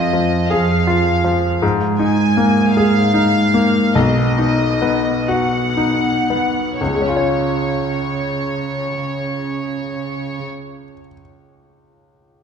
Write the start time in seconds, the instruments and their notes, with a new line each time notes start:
Already playing: cello section F2, grand piano F2 F4, violin section D#5
0.13 grand piano F3
0.50 cello section F2, grand piano G#4, violin section F5
0.87 grand piano F4
1.24 grand piano F3
1.62 grand piano G#2, cello section G#2
1.99 grand piano D#4, violin section G#5
2.37 grand piano A#3
2.75 cello section G#2, grand piano G#4, violin section F5
3.14 grand piano D#4
3.54 grand piano A#3
3.95 grand piano B1, cello section B2, violin section D#5
4.38 grand piano D#4
4.82 grand piano B3
5.28 cello section B2, grand piano F#4, violin section F#5
5.77 grand piano D#4
6.30 grand piano B3
6.80 grand piano C#2, cello section C#3, violin section C#5
6.88 grand piano C#3
6.95 grand piano G#3
7.02 grand piano C#4
7.09 grand piano F4
7.16 grand piano C#5